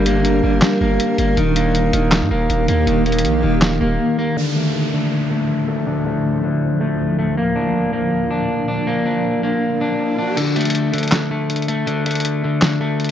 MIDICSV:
0, 0, Header, 1, 7, 480
1, 0, Start_track
1, 0, Tempo, 375000
1, 1757, Time_signature, 4, 2, 24, 8
1, 16782, End_track
2, 0, Start_track
2, 0, Title_t, "Clean electric guitar"
2, 0, Program_c, 0, 27
2, 0, Note_on_c, 0, 55, 102
2, 79, Note_on_c, 0, 58, 81
2, 542, Note_off_c, 0, 55, 0
2, 558, Note_on_c, 0, 55, 75
2, 1025, Note_off_c, 0, 58, 0
2, 1040, Note_on_c, 0, 58, 78
2, 1509, Note_off_c, 0, 58, 0
2, 1524, Note_on_c, 0, 58, 85
2, 1752, Note_off_c, 0, 55, 0
2, 1757, Note_on_c, 0, 51, 95
2, 1761, Note_off_c, 0, 58, 0
2, 1995, Note_on_c, 0, 58, 82
2, 2462, Note_off_c, 0, 51, 0
2, 2477, Note_on_c, 0, 51, 83
2, 2943, Note_off_c, 0, 58, 0
2, 2959, Note_on_c, 0, 58, 86
2, 3420, Note_off_c, 0, 58, 0
2, 3436, Note_on_c, 0, 58, 85
2, 3658, Note_off_c, 0, 51, 0
2, 3674, Note_on_c, 0, 51, 98
2, 3896, Note_off_c, 0, 58, 0
2, 3912, Note_on_c, 0, 58, 77
2, 4376, Note_off_c, 0, 51, 0
2, 4391, Note_on_c, 0, 51, 74
2, 4859, Note_off_c, 0, 58, 0
2, 4874, Note_on_c, 0, 58, 75
2, 5343, Note_off_c, 0, 58, 0
2, 5359, Note_on_c, 0, 58, 85
2, 5587, Note_off_c, 0, 51, 0
2, 5592, Note_on_c, 0, 50, 89
2, 5598, Note_off_c, 0, 58, 0
2, 5838, Note_on_c, 0, 57, 74
2, 6298, Note_off_c, 0, 50, 0
2, 6314, Note_on_c, 0, 50, 77
2, 6782, Note_off_c, 0, 57, 0
2, 6798, Note_on_c, 0, 57, 75
2, 7257, Note_off_c, 0, 57, 0
2, 7273, Note_on_c, 0, 57, 78
2, 7499, Note_off_c, 0, 50, 0
2, 7514, Note_on_c, 0, 50, 95
2, 7743, Note_off_c, 0, 57, 0
2, 7759, Note_on_c, 0, 57, 74
2, 8231, Note_off_c, 0, 50, 0
2, 8247, Note_on_c, 0, 50, 74
2, 8699, Note_off_c, 0, 57, 0
2, 8714, Note_on_c, 0, 57, 78
2, 9183, Note_off_c, 0, 57, 0
2, 9198, Note_on_c, 0, 57, 82
2, 9435, Note_off_c, 0, 57, 0
2, 9440, Note_on_c, 0, 58, 95
2, 9442, Note_off_c, 0, 50, 0
2, 9673, Note_on_c, 0, 62, 73
2, 10136, Note_off_c, 0, 58, 0
2, 10151, Note_on_c, 0, 58, 77
2, 10617, Note_off_c, 0, 62, 0
2, 10632, Note_on_c, 0, 62, 81
2, 11098, Note_off_c, 0, 62, 0
2, 11113, Note_on_c, 0, 62, 82
2, 11339, Note_off_c, 0, 58, 0
2, 11355, Note_on_c, 0, 58, 93
2, 11576, Note_off_c, 0, 62, 0
2, 11592, Note_on_c, 0, 62, 74
2, 12059, Note_off_c, 0, 58, 0
2, 12075, Note_on_c, 0, 58, 76
2, 12544, Note_off_c, 0, 62, 0
2, 12560, Note_on_c, 0, 62, 72
2, 13022, Note_off_c, 0, 62, 0
2, 13037, Note_on_c, 0, 62, 82
2, 13273, Note_on_c, 0, 50, 93
2, 13276, Note_off_c, 0, 58, 0
2, 13277, Note_off_c, 0, 62, 0
2, 13519, Note_on_c, 0, 57, 78
2, 13979, Note_off_c, 0, 50, 0
2, 13994, Note_on_c, 0, 50, 79
2, 14463, Note_off_c, 0, 57, 0
2, 14478, Note_on_c, 0, 57, 77
2, 14938, Note_off_c, 0, 57, 0
2, 14953, Note_on_c, 0, 57, 79
2, 15179, Note_off_c, 0, 50, 0
2, 15195, Note_on_c, 0, 50, 100
2, 15423, Note_off_c, 0, 57, 0
2, 15439, Note_on_c, 0, 57, 79
2, 15911, Note_off_c, 0, 50, 0
2, 15926, Note_on_c, 0, 50, 77
2, 16379, Note_off_c, 0, 57, 0
2, 16395, Note_on_c, 0, 57, 81
2, 16782, Note_off_c, 0, 50, 0
2, 16782, Note_off_c, 0, 57, 0
2, 16782, End_track
3, 0, Start_track
3, 0, Title_t, "Ambient pad"
3, 0, Program_c, 1, 92
3, 0, Note_on_c, 1, 55, 86
3, 0, Note_on_c, 1, 62, 79
3, 0, Note_on_c, 1, 70, 100
3, 1718, Note_off_c, 1, 70, 0
3, 1719, Note_off_c, 1, 55, 0
3, 1719, Note_off_c, 1, 62, 0
3, 1758, Note_on_c, 1, 51, 90
3, 1758, Note_on_c, 1, 58, 81
3, 1758, Note_on_c, 1, 67, 97
3, 5559, Note_off_c, 1, 51, 0
3, 5559, Note_off_c, 1, 58, 0
3, 5559, Note_off_c, 1, 67, 0
3, 5596, Note_on_c, 1, 38, 84
3, 5597, Note_on_c, 1, 45, 78
3, 5597, Note_on_c, 1, 53, 96
3, 9398, Note_off_c, 1, 38, 0
3, 9399, Note_off_c, 1, 45, 0
3, 9438, Note_on_c, 1, 46, 86
3, 9438, Note_on_c, 1, 62, 94
3, 13226, Note_off_c, 1, 53, 0
3, 13239, Note_off_c, 1, 46, 0
3, 13239, Note_off_c, 1, 62, 0
3, 16782, End_track
4, 0, Start_track
4, 0, Title_t, "808-style bass"
4, 0, Program_c, 2, 38
4, 0, Note_on_c, 2, 31, 114
4, 528, Note_off_c, 2, 31, 0
4, 556, Note_on_c, 2, 31, 103
4, 787, Note_off_c, 2, 31, 0
4, 1036, Note_on_c, 2, 31, 102
4, 1267, Note_off_c, 2, 31, 0
4, 1517, Note_on_c, 2, 31, 103
4, 1747, Note_off_c, 2, 31, 0
4, 1757, Note_on_c, 2, 27, 113
4, 2448, Note_off_c, 2, 27, 0
4, 2477, Note_on_c, 2, 27, 107
4, 2837, Note_on_c, 2, 43, 100
4, 2857, Note_off_c, 2, 27, 0
4, 2951, Note_off_c, 2, 43, 0
4, 2957, Note_on_c, 2, 27, 101
4, 3187, Note_off_c, 2, 27, 0
4, 3197, Note_on_c, 2, 27, 108
4, 3427, Note_off_c, 2, 27, 0
4, 3437, Note_on_c, 2, 39, 102
4, 3667, Note_off_c, 2, 39, 0
4, 3676, Note_on_c, 2, 27, 106
4, 4157, Note_on_c, 2, 34, 98
4, 4176, Note_off_c, 2, 27, 0
4, 4385, Note_off_c, 2, 34, 0
4, 4397, Note_on_c, 2, 27, 106
4, 4858, Note_off_c, 2, 27, 0
4, 4877, Note_on_c, 2, 27, 99
4, 5107, Note_off_c, 2, 27, 0
4, 16782, End_track
5, 0, Start_track
5, 0, Title_t, "Downlifter"
5, 0, Program_c, 3, 103
5, 5596, Note_on_c, 3, 60, 81
5, 9437, Note_off_c, 3, 60, 0
5, 16782, End_track
6, 0, Start_track
6, 0, Title_t, "Riser"
6, 0, Program_c, 4, 103
6, 11357, Note_on_c, 4, 60, 80
6, 13277, Note_off_c, 4, 60, 0
6, 16782, End_track
7, 0, Start_track
7, 0, Title_t, "Drums"
7, 76, Note_on_c, 9, 42, 86
7, 204, Note_off_c, 9, 42, 0
7, 316, Note_on_c, 9, 42, 83
7, 444, Note_off_c, 9, 42, 0
7, 787, Note_on_c, 9, 39, 89
7, 796, Note_on_c, 9, 38, 112
7, 796, Note_on_c, 9, 42, 90
7, 915, Note_off_c, 9, 39, 0
7, 924, Note_off_c, 9, 38, 0
7, 924, Note_off_c, 9, 42, 0
7, 1277, Note_on_c, 9, 42, 85
7, 1405, Note_off_c, 9, 42, 0
7, 1515, Note_on_c, 9, 42, 77
7, 1643, Note_off_c, 9, 42, 0
7, 1757, Note_on_c, 9, 42, 66
7, 1885, Note_off_c, 9, 42, 0
7, 1997, Note_on_c, 9, 42, 89
7, 2125, Note_off_c, 9, 42, 0
7, 2237, Note_on_c, 9, 42, 83
7, 2365, Note_off_c, 9, 42, 0
7, 2475, Note_on_c, 9, 42, 85
7, 2603, Note_off_c, 9, 42, 0
7, 2708, Note_on_c, 9, 39, 92
7, 2716, Note_on_c, 9, 42, 89
7, 2717, Note_on_c, 9, 38, 108
7, 2836, Note_off_c, 9, 39, 0
7, 2844, Note_off_c, 9, 42, 0
7, 2845, Note_off_c, 9, 38, 0
7, 3197, Note_on_c, 9, 42, 84
7, 3325, Note_off_c, 9, 42, 0
7, 3435, Note_on_c, 9, 42, 77
7, 3563, Note_off_c, 9, 42, 0
7, 3676, Note_on_c, 9, 42, 69
7, 3804, Note_off_c, 9, 42, 0
7, 3917, Note_on_c, 9, 42, 55
7, 3997, Note_off_c, 9, 42, 0
7, 3997, Note_on_c, 9, 42, 72
7, 4077, Note_off_c, 9, 42, 0
7, 4077, Note_on_c, 9, 42, 86
7, 4157, Note_off_c, 9, 42, 0
7, 4157, Note_on_c, 9, 42, 83
7, 4285, Note_off_c, 9, 42, 0
7, 4628, Note_on_c, 9, 39, 90
7, 4636, Note_on_c, 9, 38, 112
7, 4636, Note_on_c, 9, 42, 88
7, 4756, Note_off_c, 9, 39, 0
7, 4764, Note_off_c, 9, 38, 0
7, 4764, Note_off_c, 9, 42, 0
7, 13277, Note_on_c, 9, 42, 67
7, 13277, Note_on_c, 9, 49, 98
7, 13405, Note_off_c, 9, 42, 0
7, 13405, Note_off_c, 9, 49, 0
7, 13517, Note_on_c, 9, 42, 52
7, 13577, Note_off_c, 9, 42, 0
7, 13577, Note_on_c, 9, 42, 66
7, 13637, Note_off_c, 9, 42, 0
7, 13637, Note_on_c, 9, 42, 73
7, 13697, Note_off_c, 9, 42, 0
7, 13697, Note_on_c, 9, 42, 87
7, 13757, Note_off_c, 9, 42, 0
7, 13757, Note_on_c, 9, 42, 81
7, 13885, Note_off_c, 9, 42, 0
7, 13997, Note_on_c, 9, 42, 68
7, 14057, Note_off_c, 9, 42, 0
7, 14057, Note_on_c, 9, 42, 69
7, 14118, Note_off_c, 9, 42, 0
7, 14118, Note_on_c, 9, 42, 66
7, 14178, Note_off_c, 9, 42, 0
7, 14178, Note_on_c, 9, 42, 66
7, 14228, Note_on_c, 9, 39, 88
7, 14237, Note_off_c, 9, 42, 0
7, 14237, Note_on_c, 9, 38, 104
7, 14237, Note_on_c, 9, 42, 90
7, 14356, Note_off_c, 9, 39, 0
7, 14365, Note_off_c, 9, 38, 0
7, 14365, Note_off_c, 9, 42, 0
7, 14717, Note_on_c, 9, 42, 84
7, 14797, Note_off_c, 9, 42, 0
7, 14797, Note_on_c, 9, 42, 67
7, 14877, Note_off_c, 9, 42, 0
7, 14877, Note_on_c, 9, 42, 51
7, 14956, Note_off_c, 9, 42, 0
7, 14956, Note_on_c, 9, 42, 73
7, 15084, Note_off_c, 9, 42, 0
7, 15197, Note_on_c, 9, 42, 65
7, 15325, Note_off_c, 9, 42, 0
7, 15437, Note_on_c, 9, 46, 94
7, 15438, Note_on_c, 9, 42, 53
7, 15498, Note_off_c, 9, 42, 0
7, 15498, Note_on_c, 9, 42, 65
7, 15557, Note_off_c, 9, 42, 0
7, 15557, Note_on_c, 9, 42, 73
7, 15565, Note_off_c, 9, 46, 0
7, 15618, Note_off_c, 9, 42, 0
7, 15618, Note_on_c, 9, 42, 83
7, 15678, Note_off_c, 9, 42, 0
7, 15678, Note_on_c, 9, 42, 85
7, 15806, Note_off_c, 9, 42, 0
7, 16148, Note_on_c, 9, 39, 88
7, 16157, Note_on_c, 9, 38, 108
7, 16157, Note_on_c, 9, 42, 85
7, 16276, Note_off_c, 9, 39, 0
7, 16285, Note_off_c, 9, 38, 0
7, 16285, Note_off_c, 9, 42, 0
7, 16637, Note_on_c, 9, 42, 53
7, 16697, Note_off_c, 9, 42, 0
7, 16697, Note_on_c, 9, 42, 63
7, 16782, Note_off_c, 9, 42, 0
7, 16782, End_track
0, 0, End_of_file